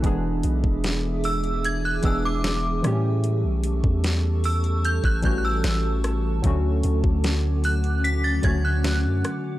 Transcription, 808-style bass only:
\new Staff \with { instrumentName = "808-style bass" } { \clef bass \time 4/4 \key a \major \tempo 4 = 75 e,,8 b,,16 e,,4.~ e,,16 e,,4 a,8~ | a,16 b,,8 e,4. a,,16 a,,8 a,,4 | d,8 d,16 d,4.~ d,16 d,8. fis,16 r8 | }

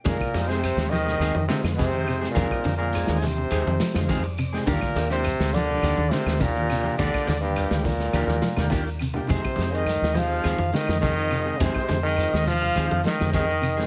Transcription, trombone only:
\new Staff \with { instrumentName = "Trombone" } { \clef bass \time 4/4 \key f \dorian \tempo 4 = 104 bes,8. c8. ees4 c8 c4 | bes,8. bes,8. c2 r8 | bes,8. c8. d4 c8 bes,4 | d8. g,8. bes,2 r8 |
c8. ees8. f4 ees8 ees4 | c8. ees8. f4 ees8 ees4 | }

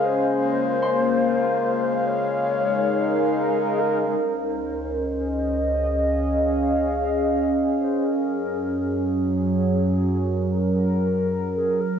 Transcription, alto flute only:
\new Staff \with { instrumentName = "Alto flute" } { \time 4/4 \key des \major \tempo 4 = 60 c''2 des''4. aes'16 bes'16 | c''2 des''4 ees''8 r16 c''16 | bes'8. bes'16 aes'2 r8 aes'16 bes'16 | }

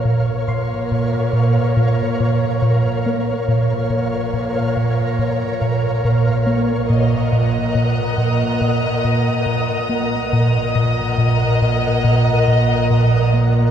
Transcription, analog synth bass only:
\new Staff \with { instrumentName = "Analog synth bass" } { \clef bass \time 4/4 \key bes \minor \tempo 4 = 70 bes,8 bes,8 bes,8 bes,8 bes,8 bes,8 bes,8 bes8 | bes,8 bes,8 bes,8 bes,8 bes,8 bes,8 bes,8 bes8 | bes,8 bes,8 bes,8 bes,8 bes,8 bes,8 bes,8 bes8 | bes,8 bes,8 bes,8 bes,8 bes,8 bes,8 bes,8 bes8 | }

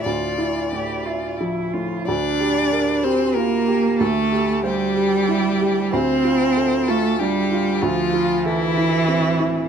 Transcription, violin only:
\new Staff \with { instrumentName = "Violin" } { \time 3/4 \key d \minor \tempo 4 = 94 d''2 r4 | d''4. c''8 bes'4 | a'4 g'2 | c''4. a'8 g'4 |
f'4 e'2 | }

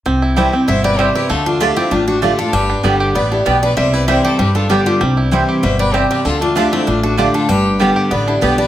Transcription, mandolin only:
\new Staff \with { instrumentName = "Mandolin" } { \time 4/4 \key c \major \tempo 4 = 194 r4 <c' e' c'' g''>8 r4. <c' e' c'' g''>8 r8 | r4 <a f' d'' a''>8 r4. <a f' d'' a''>8 r8 | r4 <b g' d'' g''>8 r4. <b g' d'' g''>8 r8 | r4 <c' e' c'' g''>8 r4. <b g' d'' g''>8 r8 |
r4 <c' e' c'' g''>8 r4. <c' e' c'' g''>8 r8 | r4 <a f' d'' a''>8 r4. <a f' d'' a''>8 r8 | r4 <b g' d'' g''>8 r4. <b g' d'' g''>8 r8 | }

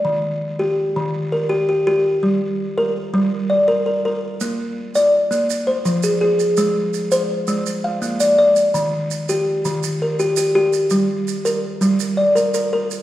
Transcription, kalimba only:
\new Staff \with { instrumentName = "Kalimba" } { \time 12/8 \key ees \major \tempo 4. = 111 << { r2. r8 bes'4 g'4. | r2. r8 d''4 bes'4. | r2. r8 c''4 aes'4. | r2. r8 f''4 d''4. |
r2. r8 bes'4 g'4. | r2. r8 d''4 bes'4. | } \\ { ees4 r8 g'4 ees4 r8 g'4 g'4 | g4 r8 bes'4 g4 r8 bes'4 bes'4 | bes4 r8 d''4 bes8 r4 f4 aes'4 | aes4 r8 c''4 aes8 r4 bes4 d''4 |
ees4 r8 g'4 ees4 r8 g'4 g'4 | g4 r8 bes'4 g4 r8 bes'4 bes'4 | } >> }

